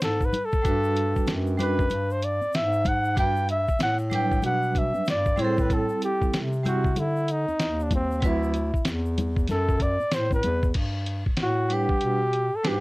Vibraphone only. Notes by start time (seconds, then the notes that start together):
0.62 G3 D4 F#4 B4
1.58 G3 D4 F#4 B4
3.15 G3 D4 F#4 B4
4.10 F#3 G3 D4 B4
5.36 G3 C4 E4 G#4
5.45 A4
6.63 G3 C4 E4 G4
8.21 F#3 C4 E4 B4
11.69 G3 D4 B4 F#5
12.63 G3 D4 F#4 B4